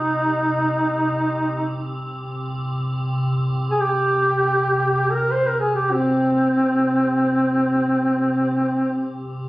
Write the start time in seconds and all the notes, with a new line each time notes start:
Already playing: C3 D#4
3.71 G#4
3.81 G4
5.10 A#4
5.31 C5
5.47 A#4
5.60 G#4
5.75 G4
5.91 C4